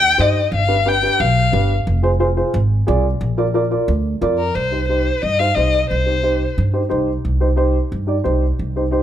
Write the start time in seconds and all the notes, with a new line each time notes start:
Already playing: D#2 G5
0.18 G2 D#4 G4 C5 D#5
0.52 G1 F5
0.67 D4 G4 B4
0.85 D4 G4 B4 G5
1.02 D4 G4 B4
1.20 B1 F5
1.52 G1 D4 G4 B4
1.87 F1
2.02 F4 G#4 C5
2.20 F4 G#4 C5
2.37 F4 G#4 C5
2.54 G#1
2.87 C2 F4 G#4 D5
3.21 A#1
3.37 F4 A#4 D5
3.54 F4 A#4 D5
3.71 F4 A#4 D5
3.88 D2
4.21 F2 F4 A#4 D5
4.38 A#4
4.55 C2 C5
4.71 D#4 G4 C5
4.88 D#4 G4 C5
5.22 G2 D#5
5.39 D#4 G4 C5 F5
5.55 C2 D#4 G4 C5 D#5
5.90 C2 C5
6.06 D#4 G4 C5
6.23 D#4 G4 C5
6.58 G2
6.73 D#4 G4 C5
6.89 C2 D#4 G4 C5
7.25 C2
7.40 D#4 G4 C5
7.56 D#4 G4 C5
7.92 G2
8.07 D#4 G4 D5
8.24 C2 D#4 G4 C5
8.59 C2
8.76 D#4 G4 C5
8.91 D#4 G4 C5